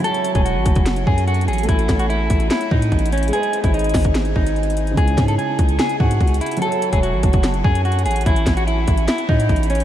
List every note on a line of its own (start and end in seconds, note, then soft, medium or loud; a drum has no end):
0.00 1.63 F#3 medium
0.00 1.65 F#4 medium
0.04 0.33 A4 loud
0.04 1.65 A4 medium
0.04 closed hi-hat medium
0.11 1.69 C#5 medium
0.11 closed hi-hat medium
0.24 closed hi-hat medium
0.35 0.57 E1 loud
0.35 0.44 G#4 medium
0.35 kick medium
0.35 closed hi-hat medium
0.45 1.03 F#4 medium
0.45 closed hi-hat medium
0.56 0.65 G#1 loud
0.66 1.05 F#1 loud
0.66 kick loud
0.66 closed hi-hat medium
0.76 kick medium
0.76 closed hi-hat medium
0.86 snare loud
0.86 closed hi-hat medium
0.96 closed hi-hat medium
1.07 1.50 F#2 loud
1.07 1.25 G#4 medium
1.07 kick medium
1.18 closed hi-hat medium
1.27 1.46 F#4 medium
1.27 closed hi-hat soft
1.34 closed hi-hat medium
1.41 closed hi-hat medium
1.48 1.68 A1 loud
1.48 1.67 G#4 medium
1.48 closed hi-hat medium
1.53 closed hi-hat medium
1.58 closed hi-hat medium
1.63 3.27 A3 medium
1.63 3.29 A4 medium
1.63 closed hi-hat medium
1.69 1.88 A1 loud
1.69 1.98 E4 loud
1.69 3.31 C#5 medium
1.69 kick loud
1.69 closed hi-hat medium
1.79 closed hi-hat medium
1.89 2.29 A1 loud
1.89 kick medium
1.89 snare medium
1.89 closed hi-hat medium
1.99 2.09 F#4 medium
1.99 closed hi-hat medium
2.10 2.48 E4 medium
2.10 closed hi-hat medium
2.30 2.50 A1 loud
2.30 kick loud
2.30 closed hi-hat medium
2.40 closed hi-hat medium
2.50 2.69 E4 medium
2.50 snare loud
2.50 closed hi-hat medium
2.61 closed hi-hat medium
2.71 2.91 A2 loud
2.71 3.10 D#4 medium
2.71 kick medium
2.82 closed hi-hat medium
2.92 3.31 A1 loud
2.92 kick medium
2.92 closed hi-hat soft
2.99 closed hi-hat medium
3.06 closed hi-hat medium
3.12 3.31 C#4 medium
3.12 closed hi-hat medium
3.18 closed hi-hat medium
3.23 closed hi-hat medium
3.27 4.91 G#3 medium
3.27 4.93 G#4 medium
3.27 closed hi-hat medium
3.33 3.62 G#4 medium
3.33 4.95 C5 medium
3.33 closed hi-hat medium
3.38 4.97 D#5 medium
3.43 closed hi-hat medium
3.53 closed hi-hat medium
3.64 3.93 G#1 medium
3.64 3.73 E4 medium
3.64 kick medium
3.64 closed hi-hat medium
3.74 4.32 D#4 medium
3.74 closed hi-hat soft
3.79 closed hi-hat soft
3.84 closed hi-hat medium
3.89 closed hi-hat medium
3.94 4.34 G#1 loud
3.94 kick loud
3.94 snare loud
3.94 open hi-hat medium
4.04 kick medium
4.04 closed hi-hat medium
4.15 snare loud
4.15 closed hi-hat medium
4.25 closed hi-hat medium
4.36 4.95 G#1 loud
4.36 4.94 D#4 medium
4.36 kick medium
4.46 closed hi-hat medium
4.56 closed hi-hat soft
4.63 closed hi-hat medium
4.70 closed hi-hat medium
4.77 closed hi-hat medium
4.87 closed hi-hat medium
4.91 6.55 C#3 medium
4.91 6.57 G#3 medium
4.97 5.17 C#2 loud
4.97 6.59 E4 medium
4.97 5.26 G#4 loud
4.97 kick loud
4.97 closed hi-hat medium
5.03 6.61 C#5 medium
5.07 closed hi-hat medium
5.18 5.38 G#2 loud
5.18 kick medium
5.18 snare medium
5.18 closed hi-hat medium
5.28 5.37 A4 medium
5.28 closed hi-hat medium
5.38 5.77 G#4 medium
5.38 closed hi-hat medium
5.59 5.79 C#2 loud
5.59 kick loud
5.59 closed hi-hat medium
5.69 closed hi-hat medium
5.79 5.98 G#4 medium
5.79 snare loud
5.79 closed hi-hat medium
5.89 closed hi-hat medium
6.00 6.20 G#2 loud
6.00 6.39 F#4 medium
6.00 kick medium
6.11 closed hi-hat medium
6.21 6.40 C#2 loud
6.21 kick medium
6.21 closed hi-hat soft
6.27 closed hi-hat medium
6.34 closed hi-hat medium
6.41 6.60 E4 medium
6.41 closed hi-hat medium
6.46 closed hi-hat medium
6.51 closed hi-hat medium
6.57 8.20 F#3 medium
6.57 closed hi-hat medium
6.61 8.22 F#4 medium
6.61 6.91 A4 loud
6.61 8.24 A4 medium
6.61 closed hi-hat medium
6.68 8.26 C#5 medium
6.68 closed hi-hat medium
6.82 closed hi-hat medium
6.93 7.15 E1 loud
6.93 7.02 G#4 medium
6.93 kick medium
6.93 closed hi-hat medium
7.03 7.61 F#4 medium
7.03 closed hi-hat medium
7.13 7.23 G#1 loud
7.23 7.63 F#1 loud
7.23 kick loud
7.23 closed hi-hat medium
7.33 kick medium
7.33 closed hi-hat medium
7.43 snare loud
7.43 closed hi-hat medium
7.54 closed hi-hat medium
7.64 8.07 F#2 loud
7.64 7.83 G#4 medium
7.64 kick loud
7.75 closed hi-hat medium
7.85 8.04 F#4 medium
7.85 closed hi-hat soft
7.92 closed hi-hat medium
7.99 closed hi-hat medium
8.06 8.25 A1 loud
8.06 8.24 G#4 medium
8.06 closed hi-hat medium
8.11 closed hi-hat medium
8.16 closed hi-hat medium
8.21 closed hi-hat medium
8.26 8.46 A1 loud
8.26 8.55 E4 loud
8.26 kick loud
8.26 closed hi-hat medium
8.36 closed hi-hat medium
8.46 8.86 A1 loud
8.46 kick medium
8.46 snare medium
8.46 closed hi-hat medium
8.57 8.66 F#4 medium
8.57 closed hi-hat medium
8.67 9.06 E4 medium
8.67 closed hi-hat medium
8.88 9.07 A1 loud
8.88 kick loud
8.88 closed hi-hat medium
8.97 closed hi-hat medium
9.08 9.27 E4 medium
9.08 snare loud
9.08 closed hi-hat medium
9.18 closed hi-hat medium
9.29 9.49 A2 loud
9.29 9.67 D#4 medium
9.29 kick medium
9.40 closed hi-hat medium
9.49 9.84 A1 loud
9.49 kick medium
9.49 closed hi-hat soft
9.56 closed hi-hat medium
9.63 closed hi-hat medium
9.70 9.84 C#4 medium
9.70 closed hi-hat medium
9.75 closed hi-hat medium
9.80 closed hi-hat medium